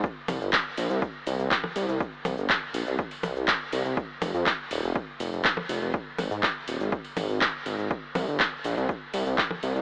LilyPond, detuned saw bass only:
\new Staff \with { instrumentName = "Detuned saw bass" } { \clef bass \time 4/4 \key c \minor \tempo 4 = 122 r8 c,16 g,,16 r8 bes,,16 c,16 r8 c,16 c,16 r8 c,16 c,16 | r8 c,16 g,,16 r8 bes,,16 c,16 r8 c,16 c,16 r8 c,16 c,16 | r8 f,,16 f,16 r8 ees,,16 f,,16 r8 f,,16 f,,16 r8 f,,16 f,,16 | r8 aes,,16 aes,16 r8 ees,,16 aes,,16 r8 aes,,16 aes,,16 r8 aes,,16 aes,,16 |
r8 c,16 g,,16 r8 bes,,16 c,16 r8 c,16 c,16 r8 c,16 c,16 | }